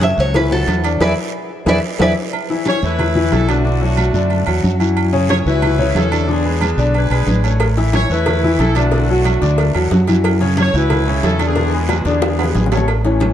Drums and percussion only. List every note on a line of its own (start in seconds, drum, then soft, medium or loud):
0.01 cowbell medium
0.01 high conga loud
0.01 low agogo medium
0.01 short guiro medium
0.18 high conga soft
0.18 short guiro medium
0.34 cowbell loud
0.34 high conga soft
0.34 low conga medium
0.34 low agogo loud
0.34 long guiro medium
0.51 high conga soft
0.51 low conga medium
0.67 cowbell medium
0.67 high conga medium
0.67 low agogo medium
0.67 short guiro medium
0.84 cowbell medium
0.84 high conga soft
0.84 low agogo loud
0.84 short guiro medium
1.00 cowbell loud
1.00 high conga medium
1.00 high timbale loud
1.00 long guiro loud
1.66 cowbell loud
1.66 high conga medium
1.66 high timbale medium
1.66 long guiro loud
1.99 cowbell loud
1.99 high conga loud
1.99 high timbale loud
1.99 long guiro medium
2.33 high conga soft
2.33 low agogo loud
2.49 high conga soft
2.66 high conga medium
2.66 low agogo medium
2.66 short guiro medium
2.82 high conga soft
2.82 short guiro medium
2.99 high conga soft
2.99 low conga medium
2.99 low agogo loud
2.99 long guiro medium
3.15 high conga soft
3.15 low conga medium
3.32 high conga medium
3.32 low timbale medium
3.32 low agogo medium
3.32 short guiro medium
3.48 high conga soft
3.48 low agogo loud
3.48 short guiro medium
3.65 high conga soft
3.65 long guiro medium
3.81 high conga soft
3.97 high conga medium
3.97 low agogo loud
3.97 short guiro medium
4.14 high conga soft
4.14 short guiro medium
4.30 high conga soft
4.30 low agogo medium
4.30 long guiro medium
4.46 high conga soft
4.46 low agogo loud
4.63 high conga medium
4.63 short guiro medium
4.80 low agogo medium
4.80 short guiro medium
4.96 high conga soft
4.96 low agogo loud
4.96 long guiro medium
5.13 high conga soft
5.29 high conga medium
5.29 low agogo medium
5.29 short guiro medium
5.46 high conga soft
5.46 short guiro medium
5.62 high conga soft
5.62 low conga medium
5.62 low agogo loud
5.62 long guiro medium
5.78 high conga soft
5.78 low conga medium
5.95 high conga medium
5.95 low timbale medium
5.95 low agogo medium
5.95 short guiro medium
6.11 high conga soft
6.11 low agogo loud
6.11 short guiro medium
6.29 high conga soft
6.29 long guiro medium
6.45 high conga soft
6.61 high conga medium
6.61 low agogo loud
6.61 short guiro medium
6.78 high conga soft
6.78 short guiro medium
6.94 high conga soft
6.94 low agogo medium
6.94 long guiro medium
7.10 high conga soft
7.10 low agogo loud
7.27 high conga medium
7.27 short guiro medium
7.44 low agogo medium
7.44 short guiro medium
7.60 cowbell loud
7.60 high conga soft
7.60 low agogo loud
7.60 long guiro medium
7.77 cowbell medium
7.77 high conga soft
7.93 cowbell medium
7.93 high conga medium
7.93 low agogo medium
7.93 short guiro medium
8.10 high conga soft
8.10 short guiro medium
8.26 cowbell loud
8.26 high conga soft
8.26 low conga medium
8.26 low agogo loud
8.26 long guiro medium
8.43 high conga soft
8.43 low conga medium
8.59 cowbell medium
8.59 high conga medium
8.59 low agogo medium
8.59 short guiro medium
8.75 cowbell medium
8.75 high conga soft
8.75 low agogo loud
8.75 short guiro medium
8.91 cowbell loud
8.91 high conga soft
8.91 long guiro medium
9.09 high conga soft
9.25 cowbell medium
9.25 high conga medium
9.25 low agogo loud
9.25 short guiro medium
9.42 cowbell medium
9.42 high conga soft
9.42 short guiro medium
9.58 cowbell loud
9.58 high conga soft
9.58 low agogo medium
9.58 long guiro medium
9.75 high conga soft
9.75 low agogo loud
9.91 cowbell medium
9.91 high conga medium
9.91 low timbale medium
9.91 short guiro medium
10.07 cowbell medium
10.07 high conga medium
10.07 low agogo medium
10.07 short guiro medium
10.24 cowbell loud
10.24 high conga soft
10.24 low agogo loud
10.24 long guiro medium
10.40 cowbell medium
10.40 high conga soft
10.57 cowbell medium
10.57 high conga medium
10.57 low agogo medium
10.57 short guiro medium
10.74 high conga soft
10.74 short guiro medium
10.90 cowbell loud
10.90 high conga soft
10.90 low conga medium
10.90 low agogo loud
10.90 long guiro medium
11.07 high conga soft
11.23 cowbell medium
11.23 high conga medium
11.23 low timbale medium
11.23 low agogo medium
11.23 short guiro medium
11.39 cowbell medium
11.39 high conga soft
11.39 low agogo loud
11.39 short guiro medium
11.55 cowbell loud
11.55 high conga soft
11.55 long guiro medium
11.73 high conga soft
11.89 cowbell medium
11.89 high bongo loud
11.89 high conga medium
11.89 low agogo loud
11.89 short guiro medium
12.05 cowbell medium
12.05 high conga soft
12.05 short guiro medium
12.22 cowbell loud
12.22 high bongo loud
12.22 high conga soft
12.22 high timbale loud
12.22 low agogo medium
12.22 long guiro medium
12.38 high conga soft
12.38 high timbale loud
12.38 low agogo loud
12.44 low bongo medium
12.55 cowbell medium
12.55 high conga medium
12.55 low timbale medium
12.55 short guiro medium
12.66 low bongo medium
12.72 cowbell medium
12.72 low timbale medium
12.72 low agogo medium
12.72 short guiro medium
12.77 low bongo loud
12.88 cowbell loud
12.88 high conga soft
12.88 low agogo loud
13.04 cowbell medium
13.04 high conga soft
13.20 cowbell medium
13.20 high conga medium
13.20 low agogo medium